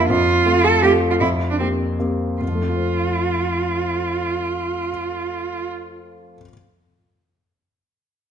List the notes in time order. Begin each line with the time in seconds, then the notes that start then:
Already playing: F2 A#3 D4 F4
0.09 F2 F4
0.46 A3 C4 F4
0.64 A4
0.83 A3 C4 F4 G4
1.11 F4
1.20 F2 E4
1.50 D4
1.59 A#3 C4 G4
1.99 A#3 C4 G4
2.41 F2 F4
2.48 F3
2.55 A3
2.62 C4
2.69 F4
2.76 C5